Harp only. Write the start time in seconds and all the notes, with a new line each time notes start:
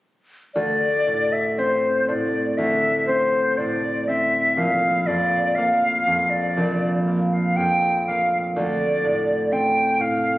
0.55 D2
1.07 A2
1.58 C4
2.08 A2
2.58 D2
3.08 C4
3.59 A2
4.09 C4
4.57 A#1
5.08 F2
5.58 A#3
6.07 F2
6.57 A#1
7.07 A#3
7.57 F2
8.08 A#3
8.56 D2
9.04 A2
9.52 C4
9.99 A2